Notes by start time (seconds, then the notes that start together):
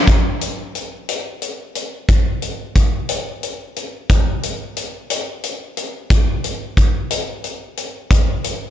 0.07 kick, closed hi-hat
0.41 closed hi-hat
0.75 closed hi-hat
1.09 closed hi-hat
1.42 closed hi-hat
1.75 closed hi-hat
2.08 kick, closed hi-hat
2.42 closed hi-hat
2.75 kick, closed hi-hat
3.09 closed hi-hat
3.43 closed hi-hat
3.76 closed hi-hat
4.10 kick, closed hi-hat
4.43 closed hi-hat
4.77 closed hi-hat
5.10 closed hi-hat
5.43 closed hi-hat
5.77 closed hi-hat
6.10 kick, closed hi-hat
6.44 closed hi-hat
6.77 kick, closed hi-hat
7.10 closed hi-hat
7.44 closed hi-hat
7.77 closed hi-hat
8.11 kick, closed hi-hat
8.44 closed hi-hat